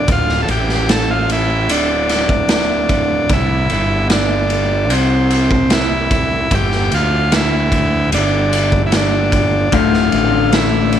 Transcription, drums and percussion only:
0.08 kick loud
0.08 ride medium
0.29 snare soft
0.48 ride medium
0.69 snare soft
0.89 snare loud
0.89 ride medium
1.29 ride medium
1.69 ride medium
2.09 snare soft
2.09 ride medium
2.29 kick medium
2.49 snare loud
2.49 ride medium
2.89 kick medium
2.89 ride medium
3.29 kick loud
3.29 ride medium
3.70 ride soft
4.10 snare medium
4.10 ride medium
4.50 ride medium
4.90 ride medium
5.30 ride medium
5.51 kick medium
5.70 snare medium
5.70 ride medium
6.11 kick medium
6.11 ride medium
6.51 kick medium
6.51 ride medium
6.72 snare soft
6.92 ride medium
7.32 snare medium
7.32 ride medium
7.72 kick medium
7.72 ride medium
8.12 ride medium
8.53 ride medium
8.72 kick medium
8.92 snare medium
8.92 ride medium
9.32 kick medium
9.32 ride medium
9.72 kick loud
9.72 ride medium
9.94 snare soft
10.12 ride medium
10.52 snare loud
10.52 ride medium
10.92 ride medium

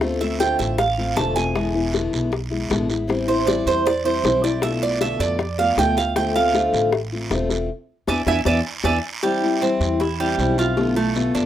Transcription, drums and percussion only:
0.01 high bongo medium
0.01 long guiro medium
0.21 high bongo soft
0.40 high bongo medium
0.40 short guiro medium
0.59 high bongo soft
0.59 short guiro medium
0.79 high bongo medium
0.79 long guiro medium
1.17 high bongo medium
1.17 low bongo medium
1.17 short guiro medium
1.36 high bongo soft
1.36 short guiro medium
1.55 high bongo medium
1.55 long guiro medium
1.94 high bongo medium
1.94 short guiro medium
2.13 high bongo soft
2.13 short guiro medium
2.32 high bongo medium
2.32 long guiro medium
2.52 high bongo soft
2.71 high bongo medium
2.71 low bongo medium
2.71 short guiro medium
2.90 high bongo soft
2.90 short guiro medium
3.09 high bongo medium
3.09 long guiro medium
3.29 high bongo soft
3.47 high bongo medium
3.47 short guiro medium
3.67 high bongo soft
3.67 short guiro medium
3.86 high bongo medium
3.86 long guiro medium
4.24 high bongo medium
4.24 low bongo medium
4.24 short guiro medium
4.43 high bongo soft
4.43 short guiro medium
4.62 high bongo medium
4.62 long guiro medium
5.01 high bongo medium
5.01 short guiro medium
5.20 high bongo soft
5.20 short guiro medium
5.39 high bongo medium
5.39 long guiro medium
5.59 high bongo soft
5.78 high bongo medium
5.78 low bongo medium
5.78 short guiro medium
5.97 high bongo soft
5.97 short guiro medium
6.16 high bongo medium
6.16 long guiro medium
6.36 high bongo soft
6.55 high bongo medium
6.55 short guiro medium
6.74 high bongo soft
6.74 short guiro medium
6.93 high bongo medium
6.93 long guiro medium
7.31 high bongo medium
7.31 low bongo medium
7.31 short guiro medium
7.50 high bongo soft
7.50 short guiro medium
8.08 high bongo loud
8.08 long guiro medium
8.27 high bongo medium
8.27 long guiro loud
8.45 high bongo loud
8.45 long guiro loud
8.84 high bongo loud
8.84 long guiro loud
9.23 cowbell loud
9.23 long guiro medium
9.61 cowbell medium
9.61 short guiro medium
9.81 cowbell medium
9.81 short guiro medium
10.00 cowbell loud
10.00 long guiro medium
10.39 cowbell medium
10.39 short guiro medium
10.58 cowbell medium
10.58 short guiro medium
10.77 cowbell loud
10.77 long guiro medium
11.16 cowbell medium
11.16 short guiro medium
11.35 cowbell medium
11.35 short guiro medium

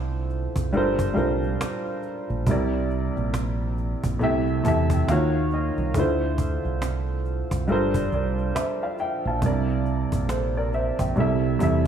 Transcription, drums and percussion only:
0.30 cajon slap soft
0.56 cajon bass medium
0.73 cajon slap soft
0.99 cajon bass medium
1.17 cajon slap soft
1.43 cajon slap soft
1.61 cajon slap loud
1.61 cajon slap medium
1.87 cajon slap soft
2.02 cajon slap soft
2.29 cajon slap soft
2.47 cajon bass loud
2.90 cajon slap soft
3.16 cajon slap soft
3.34 cajon slap loud
3.34 cajon slap medium
3.77 cajon slap soft
4.04 cajon bass medium
4.20 cajon slap soft
4.47 cajon slap soft
4.65 cajon bass medium
4.90 cajon bass loud
4.90 cajon slap soft
5.08 cajon slap loud
5.08 cajon slap medium
5.35 cajon slap soft
5.50 cajon slap soft
5.77 cajon slap soft
5.94 cajon bass loud
6.38 cajon bass medium
6.64 cajon slap soft
6.82 cajon slap loud
6.82 cajon slap medium
7.25 cajon slap soft
7.51 cajon bass medium
7.68 cajon slap soft
7.94 cajon bass medium
8.12 cajon slap soft
8.38 cajon slap soft
8.56 cajon slap loud
8.56 cajon slap medium
8.82 cajon slap soft
8.98 cajon slap soft
9.25 cajon slap soft
9.42 cajon bass loud
9.69 cajon slap soft
9.86 cajon slap soft
10.12 cajon bass medium
10.29 cajon slap loud
10.29 cajon slap medium
10.55 cajon slap soft
10.73 cajon slap soft
10.99 cajon bass medium
11.16 cajon slap soft
11.42 cajon slap soft
11.60 cajon bass medium

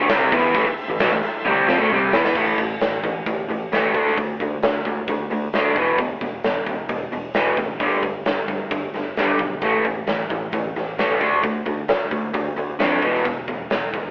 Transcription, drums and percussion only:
0.09 snare loud
0.09 open hi-hat medium
0.32 kick loud
0.32 open hi-hat medium
0.55 kick medium
0.55 open hi-hat medium
0.78 open hi-hat soft
1.00 snare medium
1.00 open hi-hat medium
1.23 open hi-hat soft
1.45 high tom medium
1.68 snare medium
1.78 mid tom medium
1.90 mid tom medium
2.13 snare medium
2.25 snare medium
2.35 kick medium
2.35 crash medium
2.58 kick medium
2.58 open hi-hat soft
2.81 snare medium
2.81 open hi-hat medium
3.04 kick medium
3.04 open hi-hat soft
3.26 kick loud
3.26 open hi-hat medium
3.50 open hi-hat soft
3.73 snare medium
3.73 open hi-hat medium
3.94 kick medium
3.94 open hi-hat soft
4.07 snare soft
4.18 kick medium
4.18 open hi-hat medium
4.40 kick medium
4.40 open hi-hat soft
4.63 snare medium
4.63 open hi-hat medium
4.85 kick medium
4.85 open hi-hat soft
5.07 kick loud
5.07 open hi-hat medium
5.31 open hi-hat soft
5.53 snare medium
5.53 open hi-hat soft
5.76 kick medium
5.76 open hi-hat soft
5.98 kick medium
5.98 open hi-hat medium
6.21 kick medium
6.21 open hi-hat soft
6.44 snare medium
6.44 open hi-hat medium
6.66 kick medium
6.66 open hi-hat soft
6.89 kick medium
6.89 open hi-hat medium
7.12 open hi-hat soft
7.34 snare medium
7.34 open hi-hat medium
7.57 kick medium
7.57 open hi-hat soft
7.80 kick medium
7.80 open hi-hat medium
8.03 kick medium
8.03 open hi-hat soft
8.25 snare medium
8.25 open hi-hat medium
8.48 kick medium
8.48 open hi-hat soft
8.71 kick loud
8.71 open hi-hat medium
8.94 snare soft
8.94 open hi-hat soft
9.17 snare medium
9.17 open hi-hat medium
9.39 kick medium
9.39 open hi-hat soft
9.61 kick medium
9.61 open hi-hat soft
9.84 kick medium
9.84 open hi-hat soft
10.07 snare medium
10.07 open hi-hat medium
10.30 kick medium
10.30 open hi-hat soft
10.52 kick medium
10.52 open hi-hat medium
10.76 snare soft
10.76 open hi-hat soft
10.99 snare medium
10.99 open hi-hat medium
11.20 kick medium
11.20 open hi-hat soft
11.43 kick medium
11.43 open hi-hat medium
11.65 kick medium
11.65 open hi-hat soft
11.88 snare medium
11.88 open hi-hat medium
12.11 kick medium
12.11 open hi-hat soft
12.34 kick loud
12.34 open hi-hat medium
12.57 open hi-hat soft
12.80 snare medium
12.80 open hi-hat medium
13.02 kick medium
13.02 open hi-hat soft
13.14 snare soft
13.25 kick loud
13.25 open hi-hat medium
13.48 kick medium
13.48 open hi-hat soft
13.70 snare medium
13.70 open hi-hat soft
13.94 kick medium
13.94 open hi-hat soft

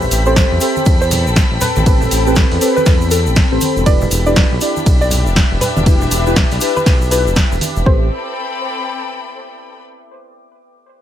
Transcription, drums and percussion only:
0.02 low conga medium
0.02 shaker soft
0.11 open hi-hat loud
0.11 shaker medium
0.26 shaker soft
0.36 kick loud
0.36 snare loud
0.36 ride medium
0.36 shaker medium
0.60 open hi-hat loud
0.60 shaker medium
0.76 high conga medium
0.76 shaker soft
0.86 kick loud
0.86 ride medium
0.86 shaker soft
1.01 shaker soft
1.11 open hi-hat loud
1.11 low conga medium
1.11 shaker loud
1.27 shaker soft
1.36 kick loud
1.36 snare loud
1.36 ride medium
1.36 shaker medium
1.61 open hi-hat loud
1.61 low conga medium
1.61 shaker medium
1.76 high conga loud
1.76 shaker soft
1.86 kick loud
1.86 ride medium
1.86 shaker medium
2.01 low conga medium
2.01 shaker soft
2.11 open hi-hat loud
2.11 shaker loud
2.27 shaker soft
2.36 kick loud
2.36 snare loud
2.36 ride medium
2.36 shaker medium
2.51 open hi-hat medium
2.61 open hi-hat loud
2.61 shaker medium
2.77 high conga medium
2.77 shaker soft
2.86 kick loud
2.86 snare medium
2.86 ride medium
2.86 shaker soft
3.01 shaker soft
3.11 open hi-hat loud
3.11 shaker medium
3.26 shaker soft
3.36 kick loud
3.36 snare loud
3.36 ride medium
3.36 shaker soft
3.61 open hi-hat loud
3.61 high conga medium
3.61 shaker medium
3.77 shaker soft
3.86 kick loud
3.86 ride medium
3.86 shaker soft
4.01 low conga medium
4.01 shaker soft
4.11 open hi-hat loud
4.11 shaker medium
4.26 shaker soft
4.36 kick loud
4.36 snare loud
4.36 ride medium
4.36 shaker soft
4.61 open hi-hat loud
4.61 shaker medium
4.76 high conga medium
4.76 shaker soft
4.86 kick loud
4.86 ride medium
4.86 shaker medium
5.02 shaker soft
5.11 open hi-hat loud
5.11 low conga medium
5.11 shaker medium
5.26 shaker soft
5.36 kick loud
5.36 snare loud
5.36 ride medium
5.36 shaker medium
5.61 open hi-hat loud
5.61 low conga medium
5.61 shaker medium
5.76 high conga loud
5.76 shaker soft
5.86 kick loud
5.86 ride medium
5.86 shaker medium
6.01 low conga medium
6.01 shaker soft
6.11 open hi-hat loud
6.11 shaker loud
6.26 shaker soft
6.36 kick loud
6.36 snare loud
6.36 ride medium
6.36 shaker soft
6.51 open hi-hat medium
6.51 shaker soft
6.61 open hi-hat loud
6.61 shaker loud
6.76 high conga medium
6.76 shaker soft
6.86 kick loud
6.86 snare medium
6.86 ride medium
6.86 shaker medium
7.02 shaker soft
7.11 open hi-hat loud
7.11 shaker medium
7.27 shaker soft
7.36 kick loud
7.36 snare loud
7.36 ride medium
7.36 shaker medium
7.52 shaker soft
7.61 open hi-hat loud
7.61 high conga medium
7.61 shaker loud
7.76 shaker soft
7.86 kick loud

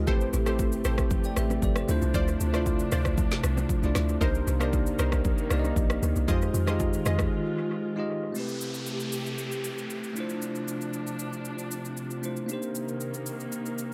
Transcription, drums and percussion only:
0.07 kick loud
0.07 low conga medium
0.07 shaker medium
0.21 shaker medium
0.33 high bongo medium
0.33 shaker loud
0.46 cross-stick medium
0.46 shaker medium
0.59 kick medium
0.59 high bongo medium
0.59 shaker medium
0.72 shaker medium
0.84 cross-stick medium
0.84 shaker loud
0.98 kick medium
0.98 cross-stick loud
0.98 shaker soft
1.11 kick loud
1.11 low conga medium
1.11 shaker medium
1.24 shaker medium
1.36 cross-stick loud
1.36 shaker loud
1.50 low bongo medium
1.50 shaker medium
1.62 kick medium
1.62 high bongo medium
1.62 low conga medium
1.62 shaker medium
1.76 cross-stick loud
1.76 shaker soft
1.89 low bongo medium
1.89 shaker medium
2.02 high bongo medium
2.02 shaker medium
2.14 kick loud
2.14 low conga medium
2.14 shaker medium
2.28 shaker medium
2.39 high bongo medium
2.39 shaker loud
2.54 cross-stick medium
2.54 shaker medium
2.66 kick medium
2.66 high bongo medium
2.66 shaker medium
2.79 shaker medium
2.92 cross-stick medium
2.92 shaker loud
3.05 kick medium
3.05 cross-stick loud
3.05 shaker medium
3.18 kick loud
3.18 low conga medium
3.18 shaker medium
3.31 snare medium
3.31 shaker medium
3.44 cross-stick loud
3.44 shaker loud
3.57 low bongo medium
3.57 shaker medium
3.69 kick medium
3.69 high bongo medium
3.69 low conga medium
3.69 shaker medium
3.83 shaker soft
3.95 cross-stick loud
3.95 snare medium
3.95 low bongo medium
3.95 shaker medium
4.09 high bongo medium
4.09 shaker medium
4.21 kick loud
4.21 low conga medium
4.21 shaker medium
4.35 shaker medium
4.46 high bongo medium
4.46 shaker loud
4.61 cross-stick medium
4.61 shaker medium
4.73 kick medium
4.73 high bongo medium
4.73 shaker medium
4.87 shaker medium
4.99 cross-stick medium
4.99 shaker loud
5.12 kick medium
5.12 cross-stick loud
5.12 shaker medium
5.25 kick loud
5.25 low conga medium
5.25 shaker medium
5.38 shaker medium
5.50 cross-stick loud
5.50 shaker loud
5.64 low bongo medium
5.64 shaker medium
5.76 kick medium
5.76 high bongo medium
5.76 low conga medium
5.76 shaker medium
5.90 cross-stick loud
5.90 shaker soft
6.03 low bongo medium
6.03 shaker medium
6.16 high bongo medium
6.16 shaker soft
6.28 kick loud
6.28 low conga medium
6.28 shaker medium
6.42 shaker medium
6.53 high bongo soft
6.53 low bongo medium
6.53 shaker loud
6.67 cross-stick medium
6.67 low bongo medium
6.67 shaker medium
6.80 kick medium
6.80 high bongo medium
6.80 shaker medium
6.93 shaker medium
7.06 cross-stick medium
7.06 shaker loud
7.19 kick loud
7.19 cross-stick loud
7.19 shaker medium
8.35 shaker medium
8.48 shaker soft
8.61 shaker medium
8.74 shaker medium
8.86 shaker medium
9.00 shaker medium
9.12 shaker medium
9.26 shaker soft
9.38 shaker medium
9.52 shaker medium
9.64 shaker medium
9.78 shaker medium
9.90 shaker medium
10.04 shaker soft
10.16 shaker medium
10.29 shaker soft
10.42 shaker medium
10.55 shaker soft
10.68 shaker medium
10.81 shaker medium
10.93 shaker medium
11.07 shaker medium
11.19 shaker medium
11.33 shaker soft
11.45 shaker medium
11.58 shaker medium
11.71 shaker medium
11.85 shaker medium
11.97 shaker medium
12.11 shaker soft
12.23 shaker medium
12.37 shaker soft
12.49 shaker medium
12.62 shaker soft
12.75 shaker medium
12.88 shaker medium
13.01 shaker medium
13.14 shaker medium
13.26 shaker medium
13.40 shaker soft
13.52 shaker medium
13.66 shaker medium
13.78 shaker medium

